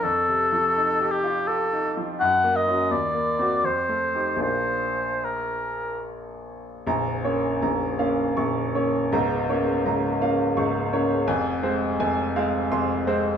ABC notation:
X:1
M:3/4
L:1/8
Q:1/4=82
K:Bb
V:1 name="Oboe"
A3 G A z | _g e d2 c2 | c2 B2 z2 | [K:Bbm] z6 |
z6 | z6 |]
V:2 name="Grand piano"
(3F,, C, F, (3E G F (3G E F, | (3_G,, B, [_D_G] (3E,, B, [CG] (3F,, A, [E=G] | [B,,,B,DF]6 | [K:Bbm] [B,,,,B,,,b] [B,Dd] [B,,,,B,,,b] [B,Df] [B,,,,B,,,d'] [B,Dd] |
[D,,,D,,b] [B,Dd] [D,,,D,,b] [B,Df] [D,,,D,,d'] [B,Dd] | [F,,,F,,a] [A,Cc] [F,,,F,,a] [A,Cf] [F,,,F,,c'] [A,Cc] |]